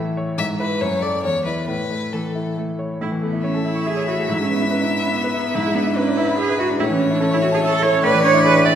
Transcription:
Already playing: grand piano A2 E3 A3 E4, cello E3
0.17 grand piano C#5
0.38 grand piano G#2, cello E3, violin E5
0.59 grand piano E4 B4, violin B4
0.81 grand piano F#2, cello A3, violin C#5
1.02 grand piano A4 D5, violin D5
1.23 grand piano E2, cello G#3, violin C#5
1.45 grand piano E4 D5, violin B4
1.67 grand piano A2, violin B4
1.90 grand piano A3
2.13 grand piano E3, cello A3, violin A4
2.35 grand piano E4
2.57 grand piano A3, cello A3
2.79 grand piano C#5
3.01 grand piano A2, cello E4
3.11 grand piano E3
3.22 grand piano A3, cello B3
3.33 grand piano E4
3.44 cello C#4, grand piano C#5, violin E5
3.54 grand piano A4
3.65 cello E4, grand piano E5
3.75 grand piano C#6
3.86 cello G#4, grand piano E5
3.97 grand piano C#5
4.07 grand piano E4, cello F#4
4.18 grand piano A3
4.29 grand piano G#2, cello E4
4.39 grand piano G#3, cello C#4
4.50 grand piano B3
4.60 cello D4, grand piano E4
4.71 cello C#4, grand piano B4
4.82 cello D4, grand piano E4
4.92 grand piano E5
5.03 cello C#4, grand piano B5
5.13 cello B3, grand piano E5
5.24 grand piano B4
5.34 grand piano E4
5.45 grand piano B3
5.54 grand piano G#2, cello E4
5.66 grand piano G#3
5.74 cello B3, grand piano D4
5.87 grand piano E4
5.96 cello C#4, violin B4, grand piano B4
6.07 grand piano D5
6.17 cello E4, grand piano E5
6.28 grand piano B5
6.38 cello G#4, grand piano E5
6.49 grand piano B4
6.59 grand piano E4, cello F#4
6.69 grand piano D4
6.79 grand piano A2, cello E4, violin C#5
6.90 grand piano E3, cello C#4
7.00 grand piano C#4
7.11 cello D4, grand piano E4
7.20 cello C#4, grand piano A4
7.31 cello E4, grand piano C#5
7.41 cello F#4, grand piano E5
7.52 cello G#4, grand piano A5
7.62 cello A4, grand piano E5
7.72 grand piano A4
7.83 grand piano E4, cello C#5
7.93 grand piano C#4
8.03 grand piano A2, cello B4, violin D5
8.14 grand piano E3
8.24 grand piano D4, cello C#5
8.34 grand piano E4
8.44 grand piano G#4, cello B4
8.54 grand piano D5
8.65 cello D5, grand piano E5

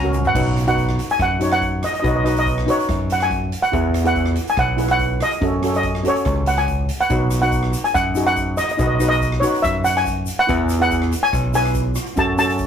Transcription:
Already playing: fingered electric bass C#2, steel pan G#5 A#5
0.02 steel pan C#4 F#4 A#4, high tom, shaker
0.14 mid tom, shaker
0.25 steel pan F#5, floor tom, shaker
0.34 fingered electric bass B1, steel pan D#4 F#4 B4, kick, crash
0.57 cross-stick, closed hi-hat
0.66 steel pan D#4 F#4 B4 F#5, closed hi-hat
0.77 kick, closed hi-hat
0.89 cross-stick
0.99 closed hi-hat
1.10 steel pan G#5, closed hi-hat
1.19 fingered electric bass F#2, steel pan F#5, kick, cross-stick, closed hi-hat
1.40 steel pan D#4 F#4 C#5, closed hi-hat
1.51 steel pan F#5, cross-stick, closed hi-hat
1.62 kick, closed hi-hat
1.83 steel pan D#5, cross-stick, closed hi-hat
1.93 steel pan D#5, closed hi-hat
2.00 steel pan D#4 F#4 D#5
2.04 fingered electric bass B1, steel pan B4, kick, closed hi-hat
2.08 steel pan D#5
2.16 steel pan D#5
2.24 steel pan D#4 F#4 B4 D#5, cross-stick, closed hi-hat
2.36 steel pan D#5, closed hi-hat
2.46 kick, closed hi-hat
2.58 cross-stick
2.66 steel pan D#4 F#4 B4 C#5, closed hi-hat
2.79 closed hi-hat
2.89 fingered electric bass F#2, kick, cross-stick, closed hi-hat
3.10 steel pan F#5, closed hi-hat
3.20 steel pan G#5, cross-stick, closed hi-hat
3.31 kick, closed hi-hat
3.52 closed hi-hat
3.62 steel pan F#5, closed hi-hat
3.72 fingered electric bass E2, steel pan E4 G#4 B4, kick, closed hi-hat
3.94 cross-stick, closed hi-hat
4.04 steel pan E4 G#4 B4 F#5, closed hi-hat
4.15 kick, closed hi-hat
4.25 cross-stick
4.36 closed hi-hat
4.47 steel pan G#5, closed hi-hat
4.57 fingered electric bass B1, steel pan F#5, kick, cross-stick, closed hi-hat
4.77 steel pan E4 G#4 B4, closed hi-hat
4.88 steel pan F#5, cross-stick, closed hi-hat
4.99 kick, closed hi-hat
5.20 steel pan D#5, cross-stick, closed hi-hat
5.31 closed hi-hat
5.41 fingered electric bass F#2, steel pan C#4 F#4 A4, kick, closed hi-hat
5.62 steel pan C#4 F#4 A4, cross-stick, closed hi-hat
5.74 steel pan D#5, closed hi-hat
5.83 kick, closed hi-hat
5.95 cross-stick
6.03 steel pan C#4 F#4 A4, closed hi-hat
6.08 steel pan C#5
6.15 closed hi-hat
6.25 fingered electric bass C#2, kick, cross-stick, closed hi-hat
6.46 steel pan F#5, closed hi-hat
6.57 steel pan G#5, cross-stick, closed hi-hat
6.68 kick, closed hi-hat
6.89 closed hi-hat
7.00 steel pan F#5, closed hi-hat
7.10 fingered electric bass B1, steel pan D#4 F#4 B4, kick, closed hi-hat, shaker
7.31 cross-stick, closed hi-hat, shaker
7.41 steel pan D#4 F#4 B4 F#5, closed hi-hat
7.52 kick, closed hi-hat, shaker
7.63 cross-stick
7.73 closed hi-hat, shaker
7.84 steel pan G#5, closed hi-hat
7.94 fingered electric bass F#2, steel pan F#5, kick, cross-stick, closed hi-hat, shaker
8.15 steel pan D#4 F#4 G#4, closed hi-hat, shaker
8.26 steel pan F#5, cross-stick, closed hi-hat, shaker
8.36 kick, closed hi-hat, shaker
8.57 steel pan D#5, cross-stick, closed hi-hat, shaker
8.64 steel pan D#5
8.69 steel pan D#5, closed hi-hat
8.77 fingered electric bass B1, steel pan D#4 F#4 B4 D#5, kick, closed hi-hat, shaker
8.87 steel pan D#5
8.95 steel pan D#5
8.99 steel pan D#4 F#4 B4, cross-stick, closed hi-hat, shaker
9.09 steel pan D#5, closed hi-hat
9.21 kick, closed hi-hat, shaker
9.32 cross-stick
9.40 steel pan D#4 F#4 B4 C#5, closed hi-hat, shaker
9.55 closed hi-hat
9.62 fingered electric bass F#2, steel pan E5, kick, cross-stick, closed hi-hat, shaker
9.84 steel pan F#5, closed hi-hat, shaker
9.97 steel pan G#5, cross-stick, closed hi-hat, shaker
10.06 kick, closed hi-hat, shaker
10.26 closed hi-hat, shaker
10.39 steel pan F#5, closed hi-hat
10.47 fingered electric bass E2, steel pan E4 G#4 B4, kick, closed hi-hat, shaker
10.69 cross-stick, closed hi-hat, shaker
10.80 steel pan E4 G#4 B4 F#5, closed hi-hat
10.91 kick, closed hi-hat, shaker
11.02 cross-stick
11.12 closed hi-hat, shaker
11.23 steel pan G#5, closed hi-hat
11.33 fingered electric bass B1, kick, cross-stick, closed hi-hat, shaker
11.54 steel pan E4 G#4 B4 G#5, closed hi-hat, shaker
11.65 cross-stick, closed hi-hat, shaker
11.74 kick, closed hi-hat, shaker
11.95 cross-stick, closed hi-hat, shaker
12.06 closed hi-hat
12.16 fingered electric bass F#2, steel pan C#4 F#4 A4 A5, kick, closed hi-hat, shaker
12.38 steel pan C#4 F#4 A4 A5, closed hi-hat, shaker
12.49 closed hi-hat, shaker
12.58 kick, closed hi-hat, shaker

